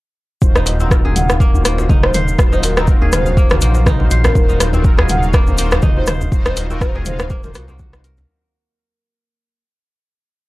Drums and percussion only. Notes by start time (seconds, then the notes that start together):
0.42 kick, cabasa
0.55 cross-stick, djembe tone, cabasa
0.66 open hi-hat, djembe slap, cabasa
0.80 djembe tone, cabasa
0.91 kick, cross-stick, cabasa
1.05 djembe tone, djembe bass
1.16 open hi-hat, mid tom, cabasa
1.29 cross-stick, djembe tone, cabasa
1.40 kick, cabasa
1.54 djembe tone, djembe bass, cabasa
1.65 cross-stick, open hi-hat, cabasa
1.78 djembe slap, djembe tone, cabasa
1.89 kick, mid tom, cabasa
2.03 cross-stick, djembe tone
2.14 open hi-hat, mid tom, cabasa
2.28 djembe tone, cabasa
2.39 kick, cross-stick, cabasa
2.53 djembe tone, cabasa
2.63 open hi-hat, djembe slap, cabasa
2.77 cross-stick, djembe tone, cabasa
2.87 kick, cabasa
3.02 djembe tone, djembe bass
3.12 cross-stick, open hi-hat, mid tom, cabasa
3.26 djembe tone, cabasa
3.37 kick, cabasa
3.49 cross-stick, mid tom, djembe slap, djembe tone, cabasa
3.61 open hi-hat, cabasa
3.74 djembe slap, djembe tone, cabasa
3.86 kick, cross-stick, mid tom, cabasa
4.00 djembe tone
4.11 open hi-hat, cabasa
4.24 cross-stick, djembe slap, djembe tone, djembe bass, cabasa
4.35 kick, cabasa
4.49 djembe tone, cabasa
4.60 cross-stick, open hi-hat, djembe slap, cabasa
4.73 djembe tone, cabasa
4.84 kick, cabasa
4.98 cross-stick, djembe tone, djembe bass
5.08 open hi-hat, mid tom, cabasa
5.23 djembe tone, cabasa
5.33 kick, cross-stick, cabasa
5.47 djembe tone, djembe bass, cabasa
5.58 open hi-hat, cabasa
5.71 cross-stick, djembe slap, djembe tone, cabasa
5.82 kick, mid tom, cabasa
5.97 djembe tone
6.06 cross-stick, open hi-hat, mid tom, cabasa
6.21 djembe tone, cabasa
6.32 kick, cabasa
6.46 cross-stick, djembe tone, cabasa
6.57 open hi-hat, djembe slap, cabasa
6.70 djembe tone, cabasa
6.81 kick, cross-stick, cabasa
6.95 djembe tone, djembe bass
7.05 open hi-hat, mid tom, cabasa
7.19 cross-stick, djembe tone, cabasa
7.30 kick, cabasa
7.43 mid tom, djembe slap, djembe tone, cabasa
7.54 cross-stick, open hi-hat, cabasa
7.68 djembe slap, djembe tone, cabasa
7.79 kick, mid tom, cabasa
7.93 cross-stick, djembe tone, cabasa
8.04 open hi-hat, cabasa
8.17 djembe slap, djembe tone, djembe bass, cabasa